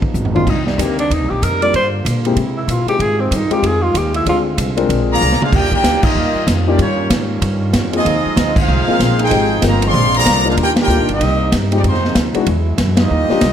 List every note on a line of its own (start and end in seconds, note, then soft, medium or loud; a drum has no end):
0.00 0.47 C#3 medium
0.00 0.45 F3 medium
0.00 0.47 B3 medium
0.00 1.73 D#4 medium
0.00 muted upright bass stroke soft
0.00 kick medium
0.14 0.45 G#1 loud
0.14 hi-hat pedal medium
0.25 floor tom medium
0.35 0.46 D#3 medium
0.35 0.46 A#3 medium
0.35 0.46 C4 medium
0.35 0.46 D4 medium
0.35 0.46 F4 medium
0.35 0.51 F4 medium
0.35 floor tom medium
0.45 0.77 C2 medium
0.45 1.72 C3 medium
0.45 2.35 G3 medium
0.45 1.71 A#3 medium
0.45 kick medium
0.45 crash medium
0.50 0.65 D#4 medium
0.66 0.84 G3 medium
0.66 snare medium
0.78 1.09 D2 loud
0.78 0.96 D#3 medium
0.78 0.96 A#3 soft
0.78 0.96 C4 medium
0.78 0.96 D4 medium
0.78 0.96 G4 medium
0.78 kick soft
0.78 hi-hat pedal medium
0.78 ride medium
0.82 0.99 A#3 medium
0.99 1.15 D4 medium
0.99 ride medium
1.10 1.20 D#2 medium
1.10 1.31 D#4 medium
1.10 kick soft
1.10 ride medium
1.20 1.30 C2 medium
1.30 1.41 A#1 medium
1.30 1.45 G4 medium
1.42 1.73 F2 loud
1.42 1.62 A#4 medium
1.42 kick soft
1.42 hi-hat pedal medium
1.42 ride medium
1.62 1.73 G3 medium
1.62 1.73 A#3 medium
1.62 1.73 D4 medium
1.62 1.73 F4 medium
1.62 1.73 A#4 medium
1.62 1.73 D5 loud
1.62 ride soft
1.74 2.04 G2 medium
1.74 2.37 D3 medium
1.74 3.00 A#3 medium
1.74 2.37 F4 medium
1.74 1.86 C5 loud
1.74 kick soft
1.74 ride medium
2.05 2.36 A#2 loud
2.05 kick soft
2.05 hi-hat pedal medium
2.05 ride medium
2.25 2.36 G#3 medium
2.25 2.36 A#3 medium
2.25 2.37 C4 medium
2.25 2.37 E4 medium
2.25 2.37 G4 medium
2.25 ride medium
2.36 2.67 C3 medium
2.36 3.00 C3 medium
2.36 5.34 G#3 medium
2.36 3.00 E4 medium
2.36 kick soft
2.36 ride medium
2.57 2.73 E4 medium
2.68 2.85 A#2 loud
2.68 2.88 F4 medium
2.68 kick soft
2.68 hi-hat pedal medium
2.68 ride medium
2.86 2.99 G#3 medium
2.86 2.99 C4 medium
2.86 2.99 D#4 soft
2.86 2.99 F4 medium
2.86 3.03 G4 loud
2.86 2.99 G#4 medium
2.86 muted upright bass stroke soft
2.86 ride soft
2.99 3.30 G#2 loud
2.99 4.25 D#3 medium
2.99 4.25 G3 medium
2.99 4.88 F4 medium
2.99 3.22 G#4 loud
2.99 kick soft
2.99 ride medium
3.20 3.37 C4 medium
3.31 3.49 G2 loud
3.31 kick soft
3.31 hi-hat pedal medium
3.31 ride loud
3.36 3.52 D#4 loud
3.50 3.62 G#3 medium
3.50 3.62 C4 medium
3.50 3.62 D#4 medium
3.50 3.62 F4 medium
3.50 3.62 G4 medium
3.50 3.68 G4 medium
3.50 muted upright bass stroke soft
3.50 ride medium
3.63 3.94 F2 medium
3.63 3.84 G#4 loud
3.63 kick soft
3.63 ride medium
3.82 3.99 F4 medium
3.94 4.25 D#2 loud
3.94 4.15 G4 loud
3.94 kick soft
3.94 hi-hat pedal medium
3.94 ride medium
4.14 4.27 E4 medium
4.14 ride medium
4.26 4.57 D2 medium
4.26 5.34 D3 medium
4.26 4.44 G#3 medium
4.26 4.44 C4 soft
4.26 4.88 C4 medium
4.26 4.44 D4 medium
4.26 4.44 F4 medium
4.26 4.40 F4 medium
4.26 4.44 G#4 medium
4.26 kick soft
4.26 ride medium
4.58 4.88 C2 loud
4.58 kick soft
4.58 hi-hat pedal medium
4.58 ride medium
4.77 5.19 G#3 medium
4.77 5.19 C4 medium
4.77 5.19 D4 medium
4.77 5.19 F4 medium
4.77 5.19 A#4 medium
4.77 ride medium
4.89 5.20 A#1 loud
4.89 5.34 C4 medium
4.89 5.34 G#4 medium
4.89 kick soft
4.89 ride medium
5.11 5.40 D3 medium
5.11 5.40 F3 loud
5.11 5.40 A#3 loud
5.11 5.40 G#4 loud
5.11 5.40 D5 loud
5.11 5.40 F5 loud
5.11 5.40 A#5 loud
5.21 5.39 C2 loud
5.21 hi-hat pedal medium
5.32 snare medium
5.41 5.52 G#3 medium
5.41 5.52 D4 medium
5.41 5.53 D4 medium
5.41 5.53 F4 loud
5.41 5.53 G#4 medium
5.41 5.54 C5 medium
5.41 5.54 F5 medium
5.41 muted upright bass stroke soft
5.41 mid tom loud
5.51 5.83 D#2 medium
5.51 8.02 D#3 medium
5.51 8.02 G3 medium
5.51 6.77 A#3 medium
5.51 5.70 A#3 loud
5.51 5.70 D4 medium
5.51 6.77 F4 medium
5.51 5.73 F4 medium
5.51 5.70 G4 medium
5.51 5.72 D5 loud
5.51 5.73 G5 loud
5.51 kick medium
5.51 crash medium
5.55 5.73 A#4 medium
5.71 6.01 A#3 loud
5.71 6.01 D4 medium
5.71 6.02 F4 medium
5.71 6.01 G4 loud
5.71 6.03 A#4 medium
5.71 6.02 D5 medium
5.71 6.03 G5 loud
5.71 kick medium
5.83 6.02 D2 medium
5.83 kick soft
5.83 snare loud
5.83 hi-hat pedal medium
5.83 ride medium
6.02 6.47 G3 medium
6.02 6.47 A#3 medium
6.02 6.47 D#4 medium
6.02 6.47 F4 medium
6.02 6.48 G4 medium
6.02 6.48 D#5 loud
6.02 muted upright bass stroke soft
6.02 kick loud
6.02 crash medium
6.15 6.34 D#2 loud
6.35 muted upright bass stroke soft
6.47 6.78 F2 loud
6.47 kick soft
6.47 snare medium
6.47 hi-hat pedal medium
6.47 ride medium
6.67 6.78 G3 medium
6.67 6.78 A#3 medium
6.67 6.79 A#3 medium
6.67 6.78 A#3 medium
6.67 6.78 C#4 medium
6.67 6.79 D4 medium
6.67 6.79 D#4 medium
6.67 6.79 F4 medium
6.67 6.78 G4 medium
6.67 6.79 G4 medium
6.67 6.79 D5 medium
6.78 7.09 G2 loud
6.78 7.09 G3 medium
6.78 7.09 A#3 medium
6.78 8.04 C#4 medium
6.78 7.09 C#4 medium
6.78 9.91 F4 medium
6.78 7.09 F4 medium
6.78 7.09 G4 medium
6.78 7.09 C#5 medium
6.78 kick soft
6.78 ride medium
7.10 7.41 G#2 medium
7.10 kick soft
7.10 snare medium
7.10 hi-hat pedal medium
7.10 ride loud
7.41 7.73 G2 loud
7.41 kick soft
7.41 ride medium
7.73 8.04 F2 medium
7.73 kick soft
7.73 snare medium
7.73 hi-hat pedal medium
7.73 ride medium
7.92 8.53 F3 medium
7.92 8.04 A#3 medium
7.92 8.04 C4 medium
7.92 8.53 C4 medium
7.92 8.04 D#4 medium
7.92 8.53 D#4 medium
7.92 8.04 F4 medium
7.92 8.54 F4 medium
7.92 8.04 G#4 medium
7.92 8.53 G#4 medium
7.92 8.54 D#5 loud
7.92 ride medium
7.97 8.54 C4 medium
8.05 8.23 D#2 loud
8.05 9.93 G#3 medium
8.05 9.31 C4 medium
8.05 9.93 D#4 medium
8.05 kick soft
8.05 ride medium
8.25 muted upright bass stroke soft
8.36 8.67 D2 loud
8.36 kick soft
8.36 snare medium
8.36 hi-hat pedal medium
8.36 ride medium
8.56 9.20 F3 medium
8.56 9.20 C4 medium
8.56 9.21 D#4 medium
8.56 9.19 F4 loud
8.56 9.21 G#4 medium
8.56 9.21 C5 loud
8.56 9.21 F5 loud
8.56 kick loud
8.56 crash medium
8.68 8.86 C2 loud
8.88 9.29 A#3 medium
8.88 9.29 C4 medium
8.88 9.29 D#4 medium
8.88 9.29 F4 medium
8.88 9.29 G#4 medium
8.88 muted upright bass stroke soft
8.99 9.30 A#1 loud
8.99 kick soft
8.99 snare medium
8.99 hi-hat pedal medium
8.99 ride medium
9.19 9.61 C4 loud
9.19 9.61 D#4 loud
9.19 9.62 D#4 loud
9.19 9.61 G#4 medium
9.19 9.62 G#4 medium
9.19 9.62 C5 medium
9.19 ride medium
9.23 9.62 G5 loud
9.31 9.62 G#1 loud
9.31 9.94 F3 medium
9.31 9.48 G#3 medium
9.31 9.49 C4 medium
9.31 9.48 D#4 medium
9.31 9.49 F4 medium
9.31 9.49 G4 medium
9.31 kick soft
9.31 ride medium
9.62 9.93 G1 medium
9.62 9.80 G#3 medium
9.62 9.82 A#3 loud
9.62 9.80 C4 medium
9.62 9.80 D#4 medium
9.62 9.80 F4 medium
9.62 9.80 A#4 medium
9.62 kick soft
9.62 snare medium
9.62 hi-hat pedal medium
9.62 ride loud
9.66 9.83 G4 medium
9.66 9.83 C5 medium
9.66 9.83 D#5 medium
9.66 9.83 A#5 medium
9.82 10.15 F3 loud
9.82 10.15 G#3 medium
9.82 10.15 C4 loud
9.82 ride medium
9.86 10.16 G#4 loud
9.86 10.16 D5 loud
9.86 10.16 F5 loud
9.86 10.16 C6 loud
9.94 10.25 A#1 loud
9.94 10.57 C3 medium
9.94 10.57 G#3 medium
9.94 10.57 A#3 medium
9.94 11.20 D4 medium
9.94 kick soft
10.14 10.45 D3 medium
10.14 10.45 F3 medium
10.14 10.45 A#3 medium
10.14 10.45 G#4 medium
10.14 10.45 D5 loud
10.14 10.45 F5 loud
10.14 10.45 A#5 loud
10.14 ride medium
10.26 10.56 C2 medium
10.26 kick soft
10.26 snare medium
10.26 hi-hat pedal medium
10.26 ride medium
10.45 10.53 G#3 medium
10.45 10.56 A#3 medium
10.45 10.57 D4 medium
10.45 10.53 D4 medium
10.45 10.54 D4 medium
10.45 10.57 D#4 medium
10.45 10.57 F4 medium
10.45 10.54 F4 medium
10.45 10.54 G#4 medium
10.45 10.57 A#4 medium
10.45 10.54 C5 medium
10.45 10.54 F5 medium
10.57 10.87 D#2 medium
10.57 11.20 D#3 medium
10.57 11.83 G3 medium
10.57 11.21 F4 medium
10.57 kick soft
10.57 ride medium
10.61 10.69 A#3 medium
10.61 10.70 D4 medium
10.61 10.70 F4 medium
10.61 10.70 G4 loud
10.61 10.70 A#4 medium
10.61 10.70 D5 medium
10.61 10.70 G5 loud
10.76 snare medium
10.76 ride medium
10.80 11.08 A#3 medium
10.80 11.08 D4 medium
10.80 11.09 F4 medium
10.80 11.08 G4 medium
10.80 11.09 A#4 medium
10.80 11.09 D5 medium
10.80 11.09 G5 loud
10.88 11.00 D2 loud
10.88 11.07 A#3 medium
10.88 11.07 D4 medium
10.88 11.07 D#4 medium
10.88 11.07 F4 medium
10.88 11.07 G4 medium
10.88 hi-hat pedal medium
10.98 11.08 A#1 medium
11.09 11.19 G1 medium
11.09 11.51 A#3 medium
11.09 11.51 C4 medium
11.09 11.51 D#5 medium
11.09 ride medium
11.13 11.52 G3 medium
11.13 11.52 D#4 medium
11.13 11.52 G4 medium
11.13 11.52 A#4 medium
11.20 11.51 C2 loud
11.20 12.47 C3 medium
11.20 11.84 A#3 medium
11.20 12.47 D#4 medium
11.20 kick soft
11.20 ride medium
11.52 11.83 G2 loud
11.52 kick soft
11.52 snare medium
11.52 hi-hat pedal medium
11.52 ride medium
11.72 11.83 G#3 medium
11.72 11.83 C4 medium
11.72 11.79 D4 medium
11.72 11.83 D#4 medium
11.72 11.83 F4 medium
11.72 11.83 G4 medium
11.72 ride medium
11.76 11.81 A#3 medium
11.76 11.81 D#4 medium
11.76 11.81 G4 medium
11.76 11.81 D5 medium
11.84 12.14 F2 medium
11.84 12.15 D#3 medium
11.84 12.47 F3 medium
11.84 13.09 G#3 medium
11.84 12.15 G#3 medium
11.84 12.15 C4 medium
11.84 12.15 D#4 medium
11.84 12.15 C5 medium
11.84 kick soft
11.84 ride medium
11.88 12.16 G#3 medium
11.88 12.16 F4 medium
11.94 snare soft
12.05 snare medium
12.15 12.33 D2 loud
12.15 kick soft
12.15 snare medium
12.15 hi-hat pedal medium
12.15 ride medium
12.34 12.46 G#3 medium
12.34 12.46 B3 medium
12.34 12.46 D4 medium
12.34 12.46 E4 medium
12.34 12.46 F#4 medium
12.34 muted upright bass stroke soft
12.34 ride medium
12.46 12.77 E2 loud
12.46 13.53 E3 medium
12.46 13.10 F#3 medium
12.46 13.11 E4 medium
12.46 kick soft
12.46 ride medium
12.78 13.09 F#2 loud
12.78 kick soft
12.78 snare medium
12.78 hi-hat pedal medium
12.78 ride medium
12.97 13.53 G3 medium
12.97 13.53 A#3 medium
12.97 13.53 D#4 medium
12.97 13.53 F4 medium
12.97 13.53 G4 medium
12.97 13.53 D#5 medium
12.97 snare loud
12.97 ride medium
13.11 13.28 D#2 medium
13.11 13.53 F3 medium
13.11 13.53 G3 medium
13.11 13.53 G4 medium
13.29 13.41 A#3 medium
13.29 13.41 D4 medium
13.29 13.41 D#4 medium
13.29 13.41 F4 medium
13.29 13.41 G4 medium
13.29 muted upright bass stroke soft
13.29 snare soft
13.41 13.53 C2 loud
13.41 kick soft
13.41 snare medium
13.41 hi-hat pedal medium
13.41 ride medium